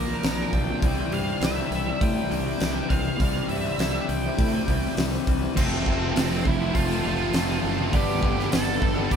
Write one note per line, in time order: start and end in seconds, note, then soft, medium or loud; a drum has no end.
0.00 0.12 A#1 medium
0.00 0.81 A#2 medium
0.00 0.22 F3 medium
0.00 0.82 F3 medium
0.00 0.82 A#3 loud
0.00 0.55 A#4 medium
0.07 0.22 A#3 medium
0.07 0.23 D4 medium
0.07 0.23 F4 medium
0.22 0.42 A#1 loud
0.22 0.68 A#2 medium
0.22 0.50 F3 loud
0.22 0.38 A#3 loud
0.22 0.37 D4 medium
0.22 0.36 F4 medium
0.22 snare loud
0.22 open hi-hat medium
0.37 0.51 A#3 medium
0.37 0.52 D4 medium
0.37 0.53 F4 medium
0.51 0.72 B1 medium
0.51 0.80 F3 medium
0.51 0.81 A#3 medium
0.51 0.81 D4 medium
0.51 0.82 F4 medium
0.51 1.15 G5 loud
0.51 kick medium
0.51 open hi-hat soft
0.82 1.01 C2 loud
0.82 3.17 C3 medium
0.82 1.41 C3 loud
0.82 1.11 E3 loud
0.82 3.19 G3 medium
0.82 1.12 G3 loud
0.82 1.13 C4 loud
0.82 3.21 C4 loud
0.82 kick loud
0.82 open hi-hat medium
1.11 1.30 G2 medium
1.11 1.41 E3 medium
1.11 1.42 G3 medium
1.11 1.42 C4 medium
1.11 1.41 F5 medium
1.11 open hi-hat soft
1.40 1.59 C2 medium
1.40 2.59 C3 loud
1.40 1.71 E3 medium
1.40 1.58 G3 loud
1.40 1.57 C4 loud
1.40 1.56 E4 loud
1.40 2.04 E5 medium
1.40 snare loud
1.40 open hi-hat medium
1.56 1.71 G3 medium
1.56 1.71 C4 medium
1.56 1.72 E4 medium
1.71 1.90 C2 medium
1.71 muted clean electric guitar stroke soft
1.71 open hi-hat medium
1.85 2.15 G3 medium
1.85 2.15 C4 medium
1.85 2.13 E4 medium
2.01 2.20 A2 medium
2.01 2.30 G5 loud
2.01 kick loud
2.01 open hi-hat medium
2.15 2.29 G3 medium
2.15 2.31 C4 medium
2.15 2.31 E4 medium
2.29 2.49 C2 medium
2.29 2.58 E3 medium
2.29 2.46 G3 medium
2.29 2.45 C4 medium
2.29 2.44 E4 medium
2.29 2.93 G5 loud
2.29 open hi-hat soft
2.45 2.59 G3 medium
2.45 2.61 C4 medium
2.45 2.61 E4 medium
2.59 2.79 C2 medium
2.59 3.05 C3 medium
2.59 2.87 E3 loud
2.59 2.75 G3 medium
2.59 2.75 C4 loud
2.59 3.06 E4 medium
2.59 snare loud
2.59 open hi-hat medium
2.75 2.88 G3 medium
2.75 2.90 C4 medium
2.89 3.09 C2 medium
2.89 3.18 E3 medium
2.89 3.19 G3 medium
2.89 3.19 C4 medium
2.89 3.48 F5 medium
2.89 kick medium
2.89 open hi-hat medium
3.18 3.39 C2 loud
3.18 5.54 C3 medium
3.18 3.78 C3 loud
3.18 3.48 E3 loud
3.18 5.55 G3 loud
3.18 3.49 G3 loud
3.18 3.49 C4 loud
3.18 5.56 C4 loud
3.18 kick loud
3.18 open hi-hat medium
3.49 3.68 G2 medium
3.49 3.78 E3 medium
3.49 3.79 G3 medium
3.49 3.80 C4 medium
3.49 3.80 E4 medium
3.49 4.10 E5 medium
3.49 open hi-hat medium
3.78 3.97 C2 medium
3.78 4.24 C3 medium
3.78 4.07 E3 medium
3.78 3.96 G3 loud
3.78 3.94 C4 loud
3.78 3.93 E4 loud
3.78 snare loud
3.78 open hi-hat medium
3.94 4.07 G3 medium
3.94 4.08 C4 medium
3.94 4.08 E4 medium
4.08 4.27 C2 medium
4.08 4.94 G5 medium
4.08 muted clean electric guitar stroke soft
4.08 open hi-hat medium
4.25 4.54 G3 medium
4.25 4.53 C4 medium
4.25 4.52 E4 medium
4.38 4.57 A2 medium
4.38 kick loud
4.38 open hi-hat medium
4.53 4.67 G3 medium
4.53 4.68 C4 medium
4.53 4.69 E4 medium
4.67 4.86 C2 medium
4.67 4.96 E3 medium
4.67 4.84 G3 medium
4.67 4.83 C4 medium
4.67 4.82 E4 medium
4.67 kick medium
4.67 open hi-hat medium
4.83 4.97 G3 medium
4.83 4.97 C4 medium
4.83 4.98 E4 medium
4.97 5.16 C2 medium
4.97 5.42 C3 medium
4.97 5.25 E3 loud
4.97 5.13 G3 medium
4.97 5.11 C4 loud
4.97 5.10 E4 loud
4.97 snare loud
4.97 open hi-hat medium
5.11 5.26 G3 medium
5.11 5.27 C4 medium
5.11 5.27 E4 medium
5.27 5.46 C2 medium
5.27 5.55 E3 medium
5.27 5.55 G3 medium
5.27 5.56 C4 medium
5.27 5.56 E4 medium
5.27 kick medium
5.27 open hi-hat medium
5.56 5.86 F1 medium
5.56 6.15 F2 medium
5.56 5.84 C3 medium
5.56 5.86 F3 loud
5.56 5.86 A3 loud
5.56 6.41 C4 medium
5.56 5.87 C4 loud
5.56 6.48 C5 medium
5.56 kick loud
5.56 crash loud
5.85 6.15 F1 loud
5.85 6.15 C3 medium
5.85 6.03 F3 medium
5.85 6.01 A3 medium
5.85 5.99 C4 medium
5.85 kick medium
6.01 6.16 F3 medium
6.01 6.17 A3 medium
6.01 6.17 C4 medium
6.15 6.44 F1 medium
6.15 6.75 F2 loud
6.15 6.44 C3 loud
6.15 6.44 F3 loud
6.15 6.44 A3 loud
6.15 6.45 C4 loud
6.15 snare loud
6.15 open hi-hat medium
6.45 6.74 F1 medium
6.45 6.74 E4 medium
6.45 6.75 E5 medium
6.45 muted distorted electric guitar stroke soft
6.45 kick medium
6.59 6.91 F3 medium
6.59 6.89 A3 medium
6.59 6.88 C4 medium
6.75 7.03 F1 medium
6.75 7.03 F4 medium
6.75 7.05 F5 medium
6.75 kick medium
6.75 open hi-hat medium
6.89 7.04 F3 medium
6.89 7.05 A3 medium
6.89 7.06 C4 medium
7.04 7.33 F1 medium
7.04 7.33 C3 medium
7.04 7.34 F3 medium
7.04 7.34 A3 medium
7.04 7.35 C4 medium
7.04 7.90 F4 medium
7.04 7.97 F5 medium
7.19 7.35 F3 medium
7.19 7.35 A3 medium
7.19 7.36 C4 medium
7.33 7.62 F1 loud
7.33 7.78 F2 loud
7.33 7.62 C3 medium
7.33 7.51 F3 loud
7.33 7.49 A3 loud
7.33 7.48 C4 loud
7.33 snare loud
7.33 open hi-hat medium
7.49 7.63 F3 medium
7.49 7.64 A3 medium
7.49 7.64 C4 medium
7.63 7.92 F#1 medium
7.63 7.91 C3 medium
7.63 7.78 F3 medium
7.63 7.77 A3 medium
7.63 7.76 C4 medium
7.77 7.92 F3 medium
7.77 7.92 A3 medium
7.77 7.91 C4 medium
7.92 8.22 G1 loud
7.92 8.49 G2 medium
7.92 8.20 D3 medium
7.92 8.21 G3 loud
7.92 8.22 B3 medium
7.92 8.24 D4 medium
7.92 8.50 G4 medium
7.92 8.49 G5 loud
7.92 kick loud
7.92 open hi-hat medium
8.21 8.51 G1 medium
8.21 8.50 D3 medium
8.21 8.37 G3 medium
8.21 8.36 B3 medium
8.21 8.35 D4 medium
8.21 kick medium
8.35 8.51 G3 medium
8.35 8.51 B3 medium
8.35 8.53 D4 medium
8.35 snare soft
8.50 8.81 G1 medium
8.50 9.10 G2 loud
8.50 8.80 D3 loud
8.50 8.80 G3 loud
8.50 8.80 B3 loud
8.50 8.81 D4 loud
8.50 9.08 A4 medium
8.50 9.13 A5 loud
8.50 snare loud
8.50 open hi-hat medium
8.81 9.10 G1 medium
8.81 muted distorted electric guitar stroke soft
8.81 kick medium
8.94 9.16 G3 medium
8.94 9.16 B3 medium
8.94 9.16 D4 medium
9.11 9.16 G1 medium
9.11 9.16 G4 medium
9.11 9.16 G5 medium
9.11 kick medium
9.11 open hi-hat medium